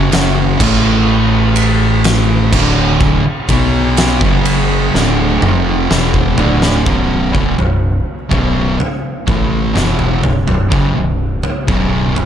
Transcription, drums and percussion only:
0.12 snare, ride
0.60 kick, crash
1.56 ride
2.04 snare, ride
2.53 kick, crash
3.01 kick
3.49 kick, ride
3.97 snare, ride
4.21 kick
4.45 ride
4.95 snare
5.42 mid tom
5.91 snare
6.14 kick
6.38 floor tom
6.62 snare
6.86 kick, floor tom
7.35 kick
7.59 floor tom
8.31 kick, floor tom
8.80 floor tom
9.28 kick, floor tom
9.76 snare, mid tom
9.99 floor tom
10.24 floor tom
10.48 floor tom
10.72 kick, floor tom
11.43 floor tom
11.68 kick
12.16 floor tom

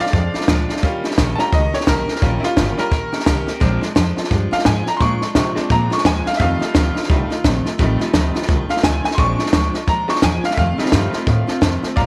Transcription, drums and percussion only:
0.06 snare
0.13 kick, snare
0.34 snare
0.41 snare
0.48 kick, snare, hi-hat pedal
0.69 snare
0.76 snare
0.83 kick, snare
1.04 snare
1.11 snare
1.18 kick, snare, hi-hat pedal
1.39 snare
1.52 kick, snare
1.73 snare
1.81 snare
1.87 kick, snare, hi-hat pedal
2.08 snare
2.16 snare
2.22 kick, snare
2.43 snare
2.57 kick, snare, hi-hat pedal
2.78 snare
2.92 kick, snare
3.13 snare
3.20 snare
3.26 kick, snare, hi-hat pedal
3.47 snare
3.61 kick, snare
3.82 snare
3.96 kick, snare, hi-hat pedal
4.17 snare
4.24 snare
4.31 kick, snare
4.52 snare
4.59 snare
4.65 kick, snare, hi-hat pedal
4.87 snare
5.00 kick, snare
5.21 snare
5.35 kick, snare, hi-hat pedal
5.56 snare
5.70 kick, snare
5.91 snare
5.98 snare
6.05 kick, snare, hi-hat pedal
6.26 snare
6.33 snare
6.40 kick, snare
6.61 snare
6.75 kick, snare, hi-hat pedal
6.96 snare
7.03 snare
7.10 kick, snare
7.31 snare
7.44 kick, snare, hi-hat pedal
7.66 snare
7.79 kick, snare
8.00 snare
8.14 kick, snare, hi-hat pedal
8.35 snare
8.42 snare
8.49 kick, snare
8.69 snare
8.77 snare
8.83 kick, snare, hi-hat pedal
9.04 snare
9.11 snare
9.18 kick, snare
9.39 snare
9.46 snare
9.53 kick, snare, hi-hat pedal
9.74 snare
9.87 kick, snare
10.09 snare
10.16 snare
10.22 kick, snare, hi-hat pedal
10.44 snare
10.51 snare
10.57 kick, snare
10.79 snare
10.86 snare
10.92 kick, snare, hi-hat pedal
11.13 snare
11.27 kick, snare
11.48 snare
11.62 kick, snare, hi-hat pedal
11.83 snare
11.97 kick, snare

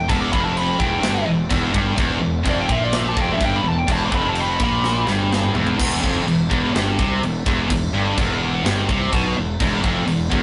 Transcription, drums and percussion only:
0.09 kick, crash
0.33 kick
0.57 crash
0.80 kick
1.03 snare, crash
1.50 kick, crash
1.74 kick
1.98 kick, crash
2.45 kick, crash
2.69 kick
2.93 snare, crash
3.17 kick
3.41 kick, crash
3.88 kick, crash
4.12 kick
4.35 crash
4.60 kick
4.84 snare
5.07 snare
5.33 snare
5.43 mid tom
5.55 floor tom
5.67 floor tom
5.80 kick, crash
6.04 kick
6.28 crash
6.51 kick
6.76 snare, crash
6.99 kick
7.23 crash
7.46 kick
7.70 kick, crash
8.18 kick, crash
8.66 snare, crash
8.89 kick
9.13 kick, crash
9.60 kick, crash
9.84 kick
10.07 crash
10.32 kick

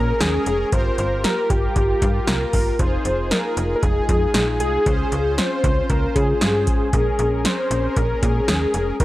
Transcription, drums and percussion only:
0.20 snare, closed hi-hat
0.46 closed hi-hat
0.72 kick, closed hi-hat
0.98 closed hi-hat
1.24 snare, closed hi-hat
1.50 kick, closed hi-hat
1.76 kick, closed hi-hat
2.02 kick, closed hi-hat
2.27 snare, closed hi-hat
2.53 kick, open hi-hat
2.79 kick, closed hi-hat
3.05 closed hi-hat
3.31 snare, closed hi-hat
3.57 closed hi-hat
3.83 kick, closed hi-hat
4.09 kick, closed hi-hat
4.34 snare, closed hi-hat
4.60 closed hi-hat
4.86 kick, closed hi-hat
5.12 closed hi-hat
5.38 snare, closed hi-hat
5.64 kick, closed hi-hat
5.90 kick, closed hi-hat
6.16 kick, closed hi-hat
6.41 snare, closed hi-hat
6.67 kick, closed hi-hat
6.93 kick, closed hi-hat
7.19 closed hi-hat
7.45 snare, closed hi-hat
7.71 closed hi-hat
7.96 kick, closed hi-hat
8.23 kick, closed hi-hat
8.48 snare, closed hi-hat
8.74 closed hi-hat
9.00 kick, closed hi-hat

